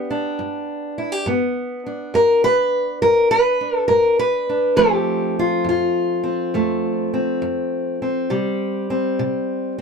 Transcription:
0.00 1.24 B3 medium
0.00 0.98 G4 medium
0.10 1.24 D4 medium
0.39 0.91 G2 medium
0.98 1.12 E4 medium
1.12 1.27 G4 soft
1.26 1.79 G2 medium
1.26 4.75 B3 medium
1.86 3.60 D4 soft
2.14 2.67 G2 medium
2.14 2.44 A#4 loud
2.44 3.02 B4 loud
3.02 3.55 G2 medium
3.02 3.30 A#4 loud
3.31 3.77 B4 loud
3.61 4.48 D4 soft
3.77 3.87 A4 loud
3.88 4.42 G2 medium
3.88 4.18 A#4 medium
4.19 4.76 B4 loud
4.49 4.75 D4 soft
4.76 5.30 F2 medium
4.76 8.27 F3 medium
4.76 6.53 A3 medium
4.76 6.23 C4 medium
4.76 5.36 G4 loud
5.39 5.67 F4 medium
5.64 6.18 F2 medium
5.69 8.32 F4 medium
6.23 7.13 C4 soft
6.54 7.07 F2 medium
6.54 8.27 A3 medium
7.14 8.02 C4 soft
7.42 7.95 F2 medium
8.02 8.90 C4 soft
8.30 8.83 C3 medium
8.30 9.82 G3 medium
8.90 9.77 C4 medium
9.19 9.72 C3 medium
9.78 9.82 C4 soft

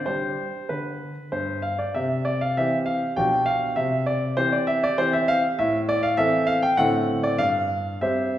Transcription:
0.06 0.50 G3 soft
0.06 0.57 D4 soft
0.06 0.56 G4 soft
0.06 0.69 C5 medium
0.69 1.14 D3 soft
0.69 1.60 B4 medium
1.32 1.76 G2 soft
1.32 1.60 C5 medium
1.62 1.79 F5 medium
1.79 1.94 D5 medium
1.95 2.55 C3 soft
1.95 2.22 E5 medium
2.25 2.41 D5 medium
2.41 2.57 F5 medium
2.57 3.01 E3 soft
2.57 3.01 C4 soft
2.57 3.02 G4 soft
2.57 2.75 E5 medium
2.86 3.17 F5 medium
3.16 3.76 B2 soft
3.16 3.74 F3 soft
3.16 3.74 D4 soft
3.16 3.74 G4 soft
3.16 3.47 G5 medium
3.46 3.77 F5 medium
3.76 4.36 C3 soft
3.76 4.04 E5 medium
4.06 4.34 D5 medium
4.37 4.81 E3 soft
4.37 4.81 C4 soft
4.37 4.81 G4 soft
4.37 4.52 C5 medium
4.52 4.68 D5 medium
4.67 4.83 E5 medium
4.83 4.98 D5 medium
4.98 5.41 E3 soft
4.98 5.42 C4 soft
4.98 5.42 G4 soft
4.98 5.13 C5 medium
5.13 5.28 E5 medium
5.28 5.46 F5 medium
5.59 6.16 A2 medium
5.59 5.76 E5 medium
5.89 6.03 D5 medium
6.03 6.18 F5 medium
6.17 6.62 E3 soft
6.17 6.62 C4 soft
6.17 6.62 A4 medium
6.17 6.45 E5 medium
6.47 6.63 F5 medium
6.62 6.78 G5 medium
6.77 7.38 A2 medium
6.77 7.36 D3 soft
6.77 7.36 C4 soft
6.77 7.36 A4 soft
6.77 7.20 F#5 medium
7.23 7.39 D5 medium
7.38 8.00 G2 soft
7.38 7.97 F5 medium
8.01 8.38 G3 soft
8.01 8.38 C4 soft
8.01 8.38 C5 soft
8.01 8.38 E5 medium

